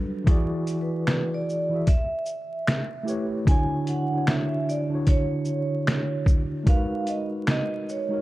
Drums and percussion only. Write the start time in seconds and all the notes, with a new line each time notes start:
0.27 kick, closed hi-hat
0.67 closed hi-hat, shaker
1.07 finger snap, snare, closed hi-hat
1.49 shaker
1.87 kick, closed hi-hat
2.26 shaker
2.67 finger snap, snare, closed hi-hat
3.08 shaker
3.47 kick, closed hi-hat
3.87 closed hi-hat, shaker
4.27 finger snap, snare, closed hi-hat
4.69 shaker
5.07 kick, closed hi-hat
5.45 shaker
5.87 finger snap, snare, closed hi-hat
6.26 kick, shaker
6.67 kick, closed hi-hat
7.07 closed hi-hat, shaker
7.47 finger snap, snare, closed hi-hat
7.89 shaker